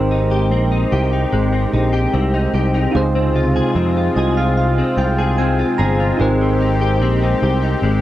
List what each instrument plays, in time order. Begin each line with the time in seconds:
Already playing: picked electric bass G#1, clean electric guitar G#3 C4, analog synth pad G#3 C4 G4, synth keys D#4 G4 A#4 C5
0.11 clean electric guitar D#4
0.31 clean electric guitar G4
0.51 picked electric bass A#1, clean electric guitar C4
0.72 clean electric guitar D#4
0.92 picked electric bass C2, clean electric guitar G4
1.13 clean electric guitar D#4
1.32 picked electric bass G#1, clean electric guitar G#3
1.53 clean electric guitar C4
1.73 picked electric bass A#1, clean electric guitar D#4
1.93 clean electric guitar G4
2.13 picked electric bass C2, clean electric guitar C4
2.34 clean electric guitar D#4
2.54 picked electric bass C2, clean electric guitar G4
2.74 clean electric guitar D#4
2.92 picked electric bass C#2, synth keys D#4 F4 G#4, analog synth pad F4
2.96 analog synth pad C3, synth keys C5
3.15 clean electric guitar C4
3.36 clean electric guitar F4
3.56 clean electric guitar G#4
3.75 picked electric bass F2, clean electric guitar C4
3.97 clean electric guitar F4
4.16 picked electric bass C2, clean electric guitar G#4, synth keys D#5
4.37 clean electric guitar F4, synth keys F5
4.57 synth keys F5
4.78 clean electric guitar C4
4.97 picked electric bass C2, clean electric guitar F4, synth keys G5
5.19 clean electric guitar G#4
5.38 clean electric guitar C4, synth keys G#5
5.59 clean electric guitar F4
5.78 picked electric bass G1, clean electric guitar G#4, synth keys A#5
6.00 clean electric guitar F4
6.17 picked electric bass G#1, clean electric guitar G#3, synth keys D#4 G4 A#4, analog synth pad G4
6.22 synth keys C5
6.41 clean electric guitar C4
6.61 clean electric guitar D#4
6.81 clean electric guitar G4
7.01 picked electric bass A#1, clean electric guitar C4
7.22 clean electric guitar D#4
7.42 picked electric bass C2, clean electric guitar G4
7.62 clean electric guitar D#4
7.82 picked electric bass G#1, clean electric guitar G#3